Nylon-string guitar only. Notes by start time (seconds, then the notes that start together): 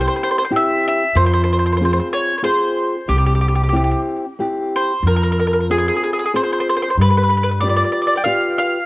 Already playing: C4 E4 G4
0.50 C4 E4 G4
1.15 F3
1.81 C4 F4 G#4
2.42 C4 F4 G#4
3.08 C3
3.72 C4 E4 G4
4.39 C4 E4 G4
5.06 F3
5.70 C4 F4 G#4
6.34 C4 F4 G#4
7.00 G3
7.63 F4 G4 B4
8.25 F4 G4 B4